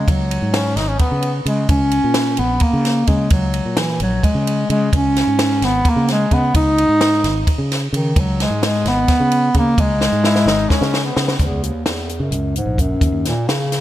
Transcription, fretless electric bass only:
0.08 C#2
0.42 G#2
0.76 G#1
1.11 C#3
1.46 C#3
1.69 C#2
2.04 A#2
2.39 A#1
2.73 C#3
3.08 C#3
3.31 C#2
3.65 A#2
4.00 A#1
4.34 C#3
4.70 C#3
4.93 C#2
5.27 G#2
5.62 G#1
5.96 C#3
6.31 C#3
6.55 C#2
6.88 G#2
7.24 G#1
7.58 C#3
7.93 C#3
8.16 C#2
8.50 G#2
8.85 G#1
9.20 C#3
9.55 C#3
9.78 C#2
10.12 G#2
10.46 G#1
10.81 C#3
11.17 C#3
11.39 C#2
11.51 C#2
12.20 C#3
12.31 C#2
12.66 A#1
13.01 D#2
13.12 D#2

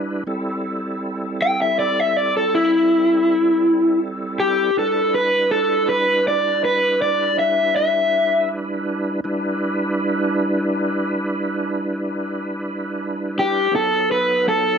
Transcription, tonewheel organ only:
Already playing: G3 D4 E4 B4
0.27 G3 C4 E4 A4
4.77 G3 D4 E4 B4
9.24 G3 D4 E4 B4
13.72 F#3 B3 D#4 A4

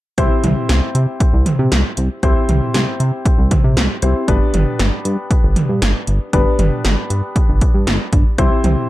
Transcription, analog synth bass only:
0.18 C2
0.44 C2
0.69 C2
0.95 C3
1.33 C2
1.59 C3
1.72 C2
1.97 C2
2.23 C2
2.49 C2
2.74 C2
3.00 C3
3.38 C2
3.64 C3
3.77 C2
4.03 C2
4.28 G1
4.54 G1
4.80 G1
5.05 G2
5.44 G1
5.69 G2
5.82 G1
6.08 G1
6.33 G1
6.59 G1
6.85 G1
7.10 G2
7.49 G1
7.74 G2
7.87 G1
8.13 G1
8.38 C2
8.64 C2

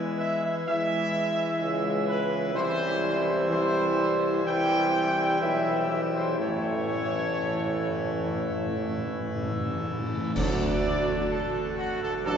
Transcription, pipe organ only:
Already playing: E3 G#3 E4 E5
2.54 E3 G3 E4 E5
6.39 E3 A3 E4 E5
10.35 D3 A3 F#4 A4

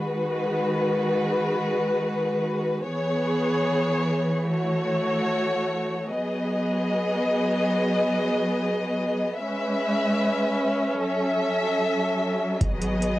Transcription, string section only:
Already playing: D#3 G#3 F#4 B4
2.82 E3 B3 G#4 C#5
4.45 A3 F#4 C#5
6.08 F#3 B3 G#4 D#5
9.35 G#3 C#4 B4 E5
10.98 F#3 A4 E5
12.61 B3 G#4 D#5

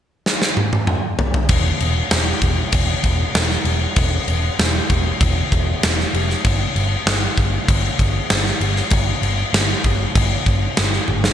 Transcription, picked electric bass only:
1.49 E1
1.81 E1
2.11 E1
2.41 E1
2.73 E1
3.03 E1
3.35 E1
3.65 E1
3.97 E1
4.28 E1
4.59 E1
4.90 E1
5.21 E1
5.52 E1
5.84 E1
6.14 F1
6.45 G1
6.76 G1
7.06 G1
7.38 G1
7.69 G1
7.99 G1
8.31 G1
8.61 G1
8.91 G1
9.22 G1
9.53 G1
9.84 G1
10.15 G1
10.46 G1
10.79 G1
11.09 G1

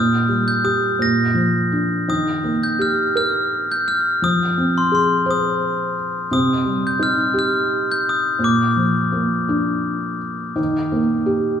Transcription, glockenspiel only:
Already playing: D#6
0.48 G6
0.65 D#6
1.02 A#6
2.10 D#6
2.63 G6
2.82 F6
3.17 F6
3.71 G6
3.88 F6
4.24 D#6
4.78 C6
4.95 C6
5.31 D#6
6.33 D#6
6.87 G6
7.03 F6
7.39 F6
7.92 G6
8.09 D#6
8.44 D6

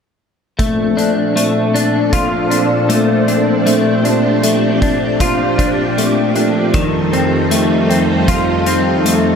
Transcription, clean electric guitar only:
0.59 A3
0.97 D4
1.36 A3
1.74 D4
2.13 F4
2.50 D4
2.89 A3
3.28 D4
3.66 A3
4.05 D4
4.43 A3
4.82 D4
5.21 F4
5.58 D4
5.98 A3
6.36 D4
6.74 D#3
7.13 C4
7.51 A3
7.90 C4
8.28 F4
8.67 C4
9.05 A3

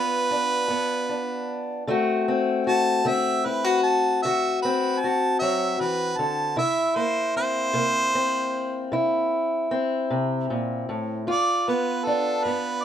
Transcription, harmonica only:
Already playing: B4
2.67 A5
3.09 E5
3.46 B4
3.83 A5
4.23 E5
4.62 B4
5.01 A5
5.39 E5
5.81 B4
6.18 A5
6.59 E5
6.96 C5
7.37 C5
11.31 D5
11.69 B4
12.05 A4
12.44 B4

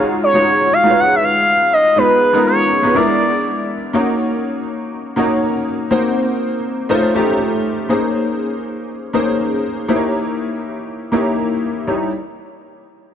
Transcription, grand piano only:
Already playing: G#3 D#4 F4 F#4 C#5
0.34 G#3 D#4 F4 F#4 C#5
0.83 G#3 D#4 F4 F#4 B4
0.90 C#5
1.96 G#3 B3 D#4 F4 B4
2.33 G#3 B3 D#4 F4 A#4
2.82 G#3 B3 D#4 F4 B4
2.95 G#3 B3 D4 E4 A#4
3.93 A#3 C#4 D#4 F#4 C#5
5.16 A#3 C#4 D#4 F#4 C#5
5.91 A#3 C4 D#4 F#4 C5
6.89 A3 C#4 D#4 F4 C5
7.15 A3 C#4 D#4 F4 G4
7.89 A#3 C#4 D#4 G#4 C5
9.13 A#3 C#4 D#4 G#4 C5
9.88 A#3 D#4 E4 G4 C5
9.95 C#5
11.12 A#3 D#4 E4 G4 C#5
11.87 G3 D#4 E4 C#5

